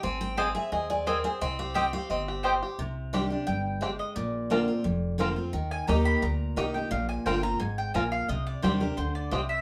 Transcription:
<<
  \new Staff \with { instrumentName = "Mandolin" } { \time 4/4 \key c \minor \tempo 4 = 174 r4 <c' aes' ees'' aes''>16 r4. r16 <c' aes' ees'' aes''>16 r8. | r4 <c' g' ees'' g''>16 r4. r16 <c' g' ees'' g''>16 r8. | r2 g''4. ees''8 | d''2. r4 |
r8 aes''8 bes''8 b''8 bes''4. g''8 | f''8 aes''8 g''8 bes''8 aes''8 g''8 aes''8 f''8 | ees''8 d''8 c''8 bes'8 c''8 d''8 ees''8 e''8 | }
  \new Staff \with { instrumentName = "Five-string banjo" } { \time 4/4 \key c \minor c'4 c'8 aes'8 aes'8 aes'8 c'8 aes'8 | c'8 g'8 c'8 g'8 c'8 g'8 c''8 g'8 | r4 <c' g'>8 r4. <c' g'>8 r8 | r4 <c' f' bes'>8 r4. <c' f' bes'>8 r8 |
r4 <ees' g'>8 r4. <ees' g'>8 r8 | r4 <c' f' bes'>8 r4. <c' f' bes'>8 r8 | r4 <c' g'>8 r4. <c' g'>8 r8 | }
  \new Staff \with { instrumentName = "Steel-string acoustic guitar" } { \time 4/4 \key c \minor << { aes''8 g''8 f''8 e''8 ees''8 d''8 bes'8 c''8 | ees''8 f''8 g''8 f''8 ees''8 r4. | r4 <ees g d' g'>8 <d' g'>8 r2 | r4 <d bes c' f'>8 <c' f'>8 r4 <d bes c' f'>8 <c' f'>8 |
r4 <ees bes ees' g'>4 r4 <ees bes ees' g'>8 <ees' g'>8 | r4 <d bes c' f'>8 <c' f'>8 r2 | r4 <ees g d' g'>8 <d' g'>8 r2 | } \\ { r1 | r1 | c2 g,4 aes4 | bes,2 f,2 |
ees2 bes,2 | bes,2 aes,4 bes,4 | c2 d4 c4 | } >> }
  \new Staff \with { instrumentName = "Upright bass" } { \clef bass \time 4/4 \key c \minor aes,,2 ees,2 | c,2 g,,2 | c,2 g,,2 | bes,,2 f,,2 |
ees,4 ees,4 d,4 c,4 | bes,,4 g,,4 aes,,4 bes,,4 | c,4 ees,4 d,4 c,4 | }
>>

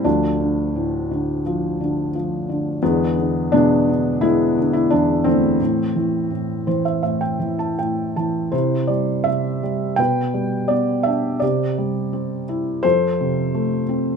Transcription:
<<
  \new Staff \with { instrumentName = "Felt piano" } { \time 4/4 \key a \minor \tempo 4 = 85 << { r1 | r1 | r4. c''16 e''16 e''16 g''8 a''16 g''8 a''8 | \key c \major r1 |
r1 | } \\ { d'2 r2 | b4 d'4 e'8. e'16 d'8 c'8~ | c'2. r4 | c''8 d''8 e''4 g''4 d''8 e''8 |
d''4. r8 c''4. r8 | } >> }
  \new Staff \with { instrumentName = "Felt piano" } { \clef bass \time 4/4 \key a \minor << { <f a>2 r2 | <d gis>4 <gis b>4 <gis b>4. <e a>8~ | <e a>2. r4 | \key c \major e'2 b'2 |
g'2 a'2 | } \\ { d,8 d8 a,8 d8 f8 d8 f8 d8 | e,8 d8 b,8 d4 d8 e,8 d8 | a,8 e8 a,8 e8 a,8 e8 a,8 e8 | c8 g8 c8 g8 b,8 g8 b8 d'8 |
c8 g8 c'8 e'8 f,8 c8 a8 c'8 | } >> }
>>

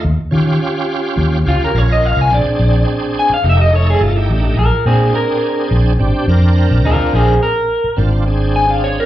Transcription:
<<
  \new Staff \with { instrumentName = "Clean electric guitar" } { \time 4/4 \key bes \mixolydian \tempo 4 = 106 r2 r8 f'16 bes'16 des''16 ees''16 f''16 aes''16 | d''4 r8 aes''16 f''16 e''16 ees''16 des''16 aes'16 f'16 e'16 d'8 | <f' bes'>8 <c' aes'>8 bes'4 r2 | <f' bes'>8 <c' aes'>8 bes'4 r4 aes''16 f''16 des''16 bes'16 | }
  \new Staff \with { instrumentName = "Tonewheel organ" } { \time 4/4 \key bes \mixolydian r8 <des' f' g'>4.~ <des' f' g'>16 r16 <des' f' g'>8 <des' f' bes'>4 | <c' d' aes'>4.~ <c' d' aes'>16 r16 <a ees' g'>8 <a ees' a'>8. <a ees' g'>8. | r8 <c' d' aes'>4.~ <c' d' aes'>16 r16 <c' d' g'>8 <c' d' bes'>4~ | <c' d' bes'>8. r4 r16 <c' d' f'>8 <c' d' aes'>8. <c' d' aes'>8. | }
  \new Staff \with { instrumentName = "Fingered electric bass" } { \clef bass \time 4/4 \key bes \mixolydian ees,16 r16 ees8 r4 ees,8 des,16 r16 bes,,8. c,16 | bes,,16 r16 bes,,8 r4 f,,4 g,,8 a,,8 | bes,,16 r16 bes,8 r4 bes,,8 aes,,16 r16 f,8. bes,,16 | d,16 r16 bes,,8 r4 aes,,2 | }
>>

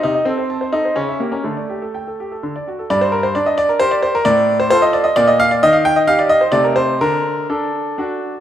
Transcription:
\new Staff \with { instrumentName = "Grand piano" } { \time 3/4 \key g \minor \tempo 4 = 130 << { ees'8 c'4 ees'8 cis'8 ais16 cis'16 | a2 r4 | d''16 c''16 bes'16 c''16 d''16 ees''16 d''16 bes'16 c''16 d''16 c''16 bes'16 | d''8. c''16 c''16 ees''16 d''16 ees''16 d''16 ees''16 f''16 d''16 |
ees''16 f''16 g''16 ees''16 f''16 d''16 ees''16 c''16 d''16 bes'16 c''8 | bes'4 a'4. r8 | } \\ { c16 ees''16 a'16 c''16 a''16 c''16 a'16 c''16 cis16 e''16 g'16 ais'16 | d16 d''16 g'16 a'16 g''16 a'16 g'16 a'16 d16 d''16 fis'16 a'16 | g,4 d'4 <g' bes'>4 | a,4 <f' a'>4 <bes, bes f'>4 |
ees4 <ees' g'>4 <c a ees' a'>4 | d4 d'4 <d' fis'>4 | } >> }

